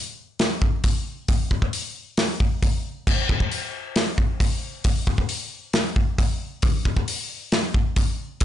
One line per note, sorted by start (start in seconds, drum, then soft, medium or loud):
0.39 snare loud
0.39 open hi-hat medium
0.62 kick medium
0.84 kick medium
0.84 open hi-hat medium
1.28 kick loud
1.28 open hi-hat medium
1.51 kick medium
1.62 kick medium
1.73 open hi-hat medium
2.17 snare loud
2.17 open hi-hat medium
2.40 kick medium
2.63 kick loud
2.63 open hi-hat medium
3.07 kick loud
3.07 crash medium
3.29 kick medium
3.40 kick medium
3.52 open hi-hat medium
3.96 snare medium
3.96 open hi-hat medium
4.18 kick medium
4.40 kick medium
4.40 open hi-hat medium
4.84 kick loud
4.84 open hi-hat medium
5.07 kick medium
5.18 kick medium
5.29 open hi-hat medium
5.73 snare loud
5.73 open hi-hat medium
5.96 kick medium
6.18 kick loud
6.18 open hi-hat medium
6.62 kick loud
6.62 open hi-hat medium
6.85 kick medium
6.97 kick medium
7.08 open hi-hat medium
7.52 snare loud
7.52 open hi-hat soft
7.74 kick medium
7.96 kick loud
7.96 open hi-hat medium
8.40 kick loud
8.40 open hi-hat medium